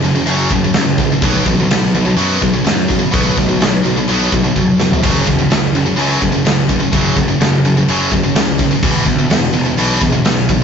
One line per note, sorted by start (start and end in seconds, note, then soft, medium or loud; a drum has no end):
0.02 0.22 F#1 medium
0.02 0.14 F#2 medium
0.02 0.14 C#3 medium
0.02 crash medium
0.15 0.25 F#2 medium
0.15 0.25 C#3 medium
0.26 0.45 F#1 medium
0.26 0.49 F#2 medium
0.26 0.49 C#3 loud
0.26 0.50 F#3 loud
0.26 crash medium
0.50 0.69 F#1 medium
0.50 0.63 F#2 medium
0.50 0.63 C#3 medium
0.50 kick medium
0.50 crash medium
0.64 0.75 F#2 medium
0.64 0.75 C#3 medium
0.74 1.12 C#2 medium
0.74 0.97 F#2 medium
0.74 0.97 C#3 medium
0.74 snare loud
0.74 crash medium
0.98 1.11 F#2 medium
0.98 1.11 C#3 medium
0.98 kick medium
0.98 crash medium
1.12 1.23 F#2 medium
1.12 1.23 C#3 medium
1.21 1.40 B1 loud
1.21 1.45 B2 medium
1.21 1.46 F#3 loud
1.21 1.46 B3 loud
1.21 kick loud
1.21 crash medium
1.46 1.65 A1 medium
1.46 1.59 B2 medium
1.46 1.59 F#3 medium
1.46 kick medium
1.46 crash medium
1.60 1.69 B2 medium
1.60 1.70 F#3 medium
1.69 1.88 B1 medium
1.69 1.92 B2 medium
1.69 1.92 F#3 medium
1.69 snare loud
1.69 crash medium
1.94 2.12 B1 medium
1.94 2.05 B2 medium
1.94 2.04 F#3 medium
1.94 crash medium
2.05 2.15 B2 medium
2.05 2.16 F#3 medium
2.16 2.35 F#2 medium
2.16 2.40 B2 medium
2.16 2.40 F#3 medium
2.16 2.40 B3 medium
2.16 crash medium
2.41 2.60 B1 medium
2.41 2.53 B2 medium
2.41 2.53 F#3 medium
2.41 kick medium
2.41 crash medium
2.54 2.64 B2 medium
2.54 2.64 F#3 medium
2.65 3.02 F#2 medium
2.65 2.87 B2 medium
2.65 2.87 F#3 medium
2.65 snare loud
2.65 crash medium
2.89 2.98 B2 medium
2.89 2.98 F#3 medium
2.89 kick medium
2.89 crash medium
2.99 3.10 B2 medium
2.99 3.12 F#3 medium
3.11 3.32 B1 loud
3.11 3.35 B2 medium
3.11 3.35 F#3 medium
3.11 3.36 B3 loud
3.11 kick loud
3.11 crash medium
3.37 3.55 B1 loud
3.37 3.47 B2 medium
3.37 3.47 F#3 medium
3.37 kick medium
3.37 crash medium
3.48 3.59 B2 medium
3.48 3.59 F#3 medium
3.60 3.79 B1 medium
3.60 3.82 B2 medium
3.60 3.82 F#3 medium
3.60 snare loud
3.60 crash medium
3.74 snare soft
3.83 4.03 B1 medium
3.83 3.96 B2 medium
3.83 3.95 F#3 medium
3.83 crash medium
3.96 4.07 B2 medium
3.96 4.08 F#3 medium
4.08 4.27 B1 loud
4.08 4.30 B2 medium
4.08 4.30 F#3 medium
4.08 4.31 B3 loud
4.08 crash medium
4.21 snare soft
4.32 4.51 B1 medium
4.32 4.43 B2 medium
4.32 4.42 F#3 medium
4.32 kick medium
4.32 crash medium
4.44 4.55 B2 medium
4.44 4.55 F#3 medium
4.55 4.92 F1 medium
4.55 4.77 B2 medium
4.55 4.77 F#3 medium
4.55 kick medium
4.80 4.92 B2 medium
4.80 4.91 F#3 medium
4.80 snare medium
4.91 5.04 B2 medium
4.91 5.03 F#3 medium
4.91 floor tom medium
5.03 5.22 F#1 loud
5.03 5.25 F#2 loud
5.03 5.26 C#3 medium
5.03 5.26 F#3 loud
5.03 kick loud
5.03 crash loud
5.03 crash medium
5.27 5.45 E1 medium
5.27 5.38 F#2 medium
5.27 5.37 C#3 medium
5.27 kick medium
5.27 crash medium
5.39 5.49 F#2 medium
5.39 5.49 C#3 medium
5.50 5.69 F#1 medium
5.50 5.72 F#2 medium
5.50 5.72 C#3 medium
5.50 snare loud
5.50 crash medium
5.73 5.92 F#1 medium
5.73 5.85 F#2 medium
5.73 5.84 C#3 medium
5.73 crash medium
5.86 5.95 F#2 medium
5.86 5.96 C#3 medium
5.96 6.16 C#2 medium
5.96 6.18 F#2 medium
5.96 6.19 C#3 medium
5.96 6.21 F#3 loud
5.96 crash medium
6.12 snare soft
6.19 6.40 F#1 loud
6.19 6.31 F#2 medium
6.19 6.30 C#3 medium
6.19 kick medium
6.19 crash medium
6.32 6.43 F#2 medium
6.32 6.43 C#3 medium
6.44 6.82 C#2 loud
6.44 6.67 F#2 medium
6.44 6.67 C#3 medium
6.44 snare loud
6.44 crash medium
6.69 6.79 F#2 medium
6.69 6.79 C#3 medium
6.69 kick medium
6.69 crash medium
6.80 6.91 F#2 medium
6.80 6.92 C#3 medium
6.92 7.11 F#1 medium
6.92 7.15 F#2 medium
6.92 7.15 C#3 medium
6.92 7.16 F#3 loud
6.92 kick loud
6.92 crash medium
7.16 7.35 F#1 medium
7.16 7.28 F#2 medium
7.16 7.27 C#3 medium
7.16 kick medium
7.16 crash medium
7.28 7.39 F#2 medium
7.28 7.40 C#3 medium
7.39 7.58 F#1 medium
7.39 7.62 F#2 medium
7.39 7.63 C#3 medium
7.39 snare loud
7.39 crash medium
7.62 7.82 F#1 medium
7.62 7.76 F#2 medium
7.62 7.76 C#3 medium
7.62 crash medium
7.77 7.87 F#2 medium
7.77 7.88 C#3 medium
7.87 8.06 F#1 medium
7.87 8.11 F#2 medium
7.87 8.11 C#3 medium
7.87 8.12 F#3 medium
7.87 crash medium
8.11 8.30 F#1 loud
8.11 8.23 F#2 medium
8.11 8.23 C#3 loud
8.11 kick medium
8.11 crash medium
8.24 8.34 F#2 medium
8.24 8.35 C#3 medium
8.35 8.72 C#2 medium
8.35 8.57 F#2 medium
8.35 8.58 C#3 medium
8.35 snare loud
8.35 crash medium
8.59 8.71 F#2 medium
8.59 8.70 C#3 medium
8.59 kick medium
8.59 crash medium
8.71 8.82 F#2 medium
8.71 8.83 C#3 medium
8.83 9.02 E1 loud
8.83 9.05 E2 medium
8.83 9.05 B2 loud
8.83 9.06 E3 loud
8.83 kick loud
8.83 crash medium
9.05 9.24 D2 medium
9.05 9.18 E2 medium
9.05 9.18 B2 medium
9.05 kick medium
9.05 crash medium
9.19 9.29 E2 medium
9.19 9.29 B2 medium
9.29 9.48 E1 medium
9.29 9.52 E2 medium
9.29 9.52 B2 loud
9.29 snare loud
9.29 crash medium
9.53 9.72 E1 medium
9.53 9.65 E2 medium
9.53 9.64 B2 medium
9.53 crash medium
9.65 9.77 E2 medium
9.65 9.78 B2 medium
9.77 9.96 B1 loud
9.77 10.00 E2 medium
9.77 10.00 B2 loud
9.77 10.01 E3 loud
9.77 crash medium
10.01 10.20 E1 medium
10.01 10.12 E2 medium
10.01 10.11 B2 medium
10.01 kick medium
10.01 crash medium
10.12 10.23 E2 medium
10.12 10.24 B2 medium
10.24 10.62 B1 medium
10.24 10.46 E2 medium
10.24 10.47 B2 medium
10.24 snare loud
10.24 crash loud
10.49 10.61 E2 medium
10.49 10.61 B2 medium
10.49 kick medium
10.49 crash medium